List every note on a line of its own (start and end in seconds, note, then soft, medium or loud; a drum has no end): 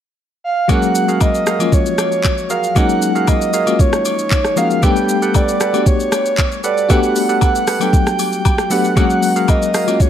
0.44 0.72 F5 loud
0.68 1.41 F#3 loud
0.68 1.41 G#3 medium
0.68 1.42 A#3 medium
0.68 1.42 C#4 medium
0.68 1.05 F#4 medium
0.68 1.42 F#4 loud
0.68 1.05 G#4 medium
0.68 1.05 A#4 medium
0.68 1.05 F#5 loud
0.68 1.21 F#5 loud
0.68 kick loud
0.68 high agogo medium
0.68 shaker medium
0.82 shaker soft
0.95 shaker loud
1.08 1.44 F#4 medium
1.08 1.44 G#4 medium
1.08 1.44 A#4 medium
1.08 1.44 F5 medium
1.08 shaker soft
1.21 1.75 D#5 loud
1.21 kick medium
1.21 high agogo medium
1.21 low woodblock medium
1.21 shaker medium
1.35 shaker medium
1.46 1.70 F#4 medium
1.46 1.70 G#4 medium
1.46 1.71 A#4 medium
1.46 1.71 F5 medium
1.46 cross-stick loud
1.46 shaker loud
1.59 2.42 F3 medium
1.59 2.42 G#3 medium
1.59 2.43 A#3 medium
1.59 2.43 C#4 medium
1.59 2.43 F4 medium
1.59 high agogo medium
1.59 shaker medium
1.72 2.51 C#5 loud
1.72 kick loud
1.72 shaker medium
1.86 shaker soft
1.98 cross-stick medium
1.98 high agogo medium
1.98 shaker medium
2.12 shaker soft
2.24 kick medium
2.24 clap medium
2.24 high agogo medium
2.24 shaker medium
2.38 shaker soft
2.50 2.74 F#4 medium
2.50 2.74 G#4 medium
2.50 2.74 A#4 medium
2.50 2.74 F5 medium
2.50 2.79 F5 loud
2.50 shaker medium
2.63 shaker medium
2.75 3.48 F#3 loud
2.75 3.48 G#3 medium
2.75 3.49 A#3 medium
2.75 3.49 C#4 medium
2.75 3.49 D#4 loud
2.75 3.12 F#4 medium
2.75 3.12 G#4 medium
2.75 3.12 A#4 medium
2.75 3.12 F#5 loud
2.75 3.30 F#5 loud
2.75 kick loud
2.75 high agogo medium
2.75 shaker medium
2.89 shaker soft
3.02 shaker medium
3.15 3.50 F#4 medium
3.15 3.51 G#4 medium
3.15 3.51 A#4 medium
3.15 3.51 F5 medium
3.15 shaker soft
3.27 3.82 D#5 loud
3.27 kick medium
3.27 high agogo medium
3.27 low woodblock medium
3.27 shaker medium
3.42 shaker medium
3.53 3.77 F#4 medium
3.53 3.77 G#4 medium
3.53 3.77 A#4 medium
3.53 3.78 F5 medium
3.53 shaker loud
3.66 4.39 G#3 medium
3.66 4.39 A#3 medium
3.66 4.40 C#4 medium
3.66 4.39 F4 medium
3.66 4.40 F#4 medium
3.66 high agogo medium
3.66 shaker medium
3.79 4.59 C#5 loud
3.79 kick loud
3.79 shaker medium
3.93 cross-stick medium
3.93 shaker soft
4.05 high agogo medium
4.05 shaker medium
4.19 shaker soft
4.31 kick medium
4.31 clap medium
4.31 high agogo medium
4.31 shaker medium
4.45 cross-stick medium
4.45 shaker soft
4.56 4.77 F3 medium
4.56 4.78 G#3 medium
4.56 4.78 A#3 medium
4.56 4.78 C#4 medium
4.56 4.81 F#4 medium
4.56 4.79 F#4 medium
4.56 4.81 G#4 medium
4.56 4.81 A#4 medium
4.56 4.81 F5 medium
4.56 4.85 F5 loud
4.56 shaker medium
4.70 shaker medium
4.82 5.55 G3 loud
4.82 5.55 A3 medium
4.82 5.56 B3 medium
4.82 5.56 D4 medium
4.82 5.19 G4 medium
4.82 5.56 G4 loud
4.82 5.19 A4 medium
4.82 5.19 B4 medium
4.82 5.19 G5 loud
4.82 5.37 G5 loud
4.82 kick loud
4.82 high agogo medium
4.82 shaker medium
4.96 shaker soft
5.09 shaker loud
5.22 5.57 G4 medium
5.22 5.57 A4 medium
5.22 5.58 B4 medium
5.22 5.58 F#5 medium
5.22 shaker soft
5.34 5.87 D5 loud
5.34 kick medium
5.34 high agogo medium
5.34 low woodblock medium
5.34 shaker medium
5.48 shaker medium
5.60 5.84 G4 medium
5.60 5.84 A4 medium
5.60 5.84 B4 medium
5.60 5.84 F#5 medium
5.60 cross-stick medium
5.60 shaker medium
5.73 6.56 A3 medium
5.73 6.57 B3 medium
5.73 6.57 D4 medium
5.73 6.56 F#4 medium
5.73 6.57 G4 medium
5.73 high agogo medium
5.73 shaker medium
5.86 6.60 C#5 loud
5.86 kick loud
5.86 shaker medium
6.00 shaker soft
6.12 cross-stick loud
6.12 high agogo medium
6.12 shaker loud
6.26 shaker soft
6.38 kick medium
6.38 clap medium
6.38 high agogo medium
6.38 shaker medium
6.52 shaker soft
6.64 6.88 G4 medium
6.64 6.88 A4 medium
6.64 6.88 B4 medium
6.64 6.92 D5 loud
6.64 6.88 F#5 medium
6.64 shaker medium
6.77 shaker medium
6.89 7.62 A3 medium
6.89 7.62 B3 medium
6.89 7.63 D4 medium
6.89 7.62 F#4 loud
6.89 7.26 G4 loud
6.89 7.63 G4 loud
6.89 7.26 A4 medium
6.89 7.26 B4 medium
6.89 7.26 F#5 loud
6.89 7.42 F#5 loud
6.89 kick loud
6.89 high agogo medium
6.89 shaker medium
7.03 shaker soft
7.16 open hi-hat medium
7.16 shaker loud
7.29 7.64 G4 medium
7.29 7.64 A4 medium
7.29 7.64 B4 medium
7.29 7.65 F#5 medium
7.29 shaker soft
7.41 7.83 F#5 loud
7.41 kick medium
7.41 high agogo medium
7.41 low woodblock medium
7.41 shaker medium
7.55 shaker medium
7.67 7.91 G4 medium
7.67 7.91 A4 medium
7.67 7.91 B4 medium
7.67 7.91 F#5 medium
7.67 cross-stick medium
7.67 open hi-hat medium
7.67 shaker loud
7.80 8.52 F#3 medium
7.80 8.53 A3 medium
7.80 8.53 B3 medium
7.80 8.53 D4 medium
7.80 8.54 A4 medium
7.80 8.73 G5 loud
7.80 high agogo medium
7.80 shaker medium
7.93 kick loud
7.93 shaker medium
8.07 cross-stick medium
8.07 shaker medium
8.19 open hi-hat medium
8.19 high agogo medium
8.19 shaker medium
8.33 shaker medium
8.45 kick medium
8.45 high agogo medium
8.45 low woodblock medium
8.45 shaker medium
8.58 cross-stick medium
8.58 shaker soft
8.70 8.91 F#3 medium
8.70 8.91 A3 medium
8.70 8.92 B3 medium
8.70 8.92 D4 medium
8.70 8.95 G4 medium
8.70 8.92 G4 medium
8.70 8.95 A4 medium
8.70 8.95 B4 medium
8.70 8.95 F#5 medium
8.70 8.97 F#5 loud
8.70 open hi-hat medium
8.70 shaker medium
8.84 shaker medium
8.96 9.69 F#3 loud
8.96 9.69 G#3 medium
8.96 9.69 A#3 medium
8.96 9.70 C#4 medium
8.96 9.33 F#4 medium
8.96 9.70 F#4 loud
8.96 9.33 G#4 medium
8.96 9.33 A#4 medium
8.96 9.33 F#5 loud
8.96 9.51 F#5 loud
8.96 kick loud
8.96 high agogo medium
8.96 shaker medium
9.10 shaker soft
9.23 open hi-hat medium
9.23 shaker loud
9.36 9.71 F#4 medium
9.36 9.71 G#4 medium
9.36 9.71 A#4 medium
9.36 9.71 F5 medium
9.36 shaker medium
9.48 10.03 D#5 loud
9.48 kick medium
9.48 high agogo medium
9.48 low woodblock medium
9.48 shaker medium
9.62 shaker medium
9.74 9.98 F#4 medium
9.74 9.98 G#4 medium
9.74 9.98 A#4 medium
9.74 9.98 F5 medium
9.74 cross-stick medium
9.74 open hi-hat medium
9.74 shaker loud
9.87 10.10 G#3 medium
9.87 10.10 A#3 medium
9.87 10.10 C#4 medium
9.87 10.10 F4 medium
9.87 10.10 F#4 medium
9.87 high agogo medium
9.87 shaker medium
10.00 10.10 C#5 loud
10.00 kick loud
10.00 shaker medium